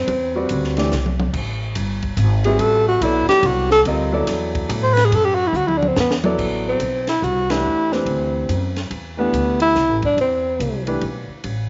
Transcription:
Already playing: tenor saxophone C4
0.08 upright bass E2, ride
0.35 grand piano G3 C4 F#4 B4 D5
0.49 upright bass D2, hi-hat pedal, ride
0.64 snare
0.77 grand piano E3 A3 D4 G4 D5, snare, ride
0.91 upright bass C2, snare, hi-hat pedal
1.06 mid tom
1.20 mid tom
1.33 upright bass A1, kick, crash
1.75 upright bass G1, hi-hat pedal, ride
2.02 kick, ride
2.17 upright bass G#1, hi-hat pedal, ride
2.44 grand piano G3 C4 F#4 B4 E5, tenor saxophone G#4, ride
2.59 upright bass A1, tenor saxophone A4, ride
2.88 tenor saxophone F#4
3.01 upright bass B1, grand piano F#3 B3 E4 A4 D5, tenor saxophone E4, hi-hat pedal, ride
3.28 tenor saxophone G4, muted upright bass stroke, snare, ride
3.43 upright bass C2, ride
3.47 tenor saxophone F#4
3.71 tenor saxophone A4, snare
3.85 upright bass D2, grand piano G3 C4 F4 A#4 D#5, ride
4.12 grand piano F#3 B3 E4 A4 D5
4.27 upright bass E2, snare, hi-hat pedal, ride
4.55 kick, ride
4.69 upright bass A2, hi-hat pedal, ride
4.83 tenor saxophone C5
4.94 tenor saxophone B4, snare, ride
5.05 tenor saxophone G#4
5.12 upright bass F#2, tenor saxophone A4, ride
5.25 tenor saxophone G4
5.35 tenor saxophone F#4
5.47 tenor saxophone E4
5.53 upright bass D2, tenor saxophone F#4, hi-hat pedal
5.67 tenor saxophone E4, mid tom
5.78 tenor saxophone D4
5.83 mid tom
5.88 tenor saxophone C4
5.96 upright bass E2, snare, hi-hat pedal
6.00 tenor saxophone B3
6.11 snare
6.24 grand piano F#3 B3 E4 A4 D5, mid tom
6.38 upright bass A1, kick, crash
6.69 tenor saxophone C4
6.80 upright bass B1, hi-hat pedal, ride
7.07 tenor saxophone E4, snare, ride
7.22 upright bass C2, tenor saxophone F#4, hi-hat pedal
7.50 grand piano E3 A3 D4 G4 B4, tenor saxophone E4, snare, ride
7.64 upright bass E2
7.92 grand piano E3 A3 D4 G4 B4, tenor saxophone C4, snare
8.06 upright bass D2, ride
8.49 upright bass F#2, hi-hat pedal, ride
8.76 snare, ride
8.90 upright bass E2, ride
9.17 grand piano E3 A3 D4 G4 B4, tenor saxophone B3
9.33 upright bass D2, hi-hat pedal, ride
9.60 tenor saxophone E4, ride
9.75 upright bass C2, snare, hi-hat pedal
9.89 upright bass A1
10.02 upright bass G1, tenor saxophone D4, kick, ride
10.17 upright bass E2, tenor saxophone C4, ride
10.60 upright bass C2, hi-hat pedal, ride
10.87 grand piano E3 A3 D4 G4 B4, ride
11.01 upright bass B1, ride
11.29 muted upright bass stroke
11.44 upright bass A1, ride

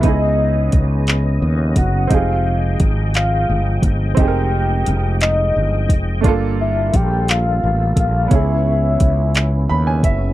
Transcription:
0.01 fretless electric bass C#2, tonewheel organ C#3 B3 C#4 D#5, grand piano B3 D#4, kick, closed hi-hat
0.05 grand piano E4 G#4, soft synth lead D#5
0.72 fretless electric bass C#2, kick, closed hi-hat
1.07 clap, closed hi-hat
1.42 fretless electric bass D#2
1.76 fretless electric bass F#1, soft synth lead F#5, kick, closed hi-hat
2.07 fretless electric bass F1, tonewheel organ F3 G#3 G5, grand piano C4 D#4, kick, closed hi-hat
2.12 grand piano G4 G#4, soft synth lead F5
2.80 fretless electric bass G#1, kick, closed hi-hat
3.14 soft synth lead F5, clap, closed hi-hat
3.49 fretless electric bass G1
3.82 fretless electric bass G1, kick, closed hi-hat
4.15 fretless electric bass F1, grand piano C4 D#4, soft synth lead G5, kick, closed hi-hat
4.19 grand piano G4 G#4
4.28 grand piano A#4
4.86 fretless electric bass F1, closed hi-hat
5.21 soft synth lead D#5, clap, closed hi-hat
5.56 fretless electric bass G1
5.89 fretless electric bass F1, kick, closed hi-hat
6.21 tonewheel organ G3 A#3 F4 A4, grand piano A3 D4, kick, closed hi-hat
6.25 fretless electric bass G1, grand piano A#3 F4 A4
6.61 soft synth lead E5
6.94 fretless electric bass A#1, soft synth lead G5, kick, closed hi-hat
7.28 soft synth lead F5, clap, closed hi-hat
7.64 fretless electric bass A1
7.96 fretless electric bass A#1, soft synth lead F5, kick, closed hi-hat
8.28 fretless electric bass C#2, tonewheel organ C#3 B3 C#4 E4, grand piano B3 C#4, kick, closed hi-hat
8.32 grand piano E4 G#4, soft synth lead E5
9.00 fretless electric bass C#2, kick, closed hi-hat
9.35 clap, closed hi-hat
9.69 fretless electric bass D#2, grand piano B5
9.87 grand piano G#5
10.03 fretless electric bass F#1, grand piano E5, kick, closed hi-hat

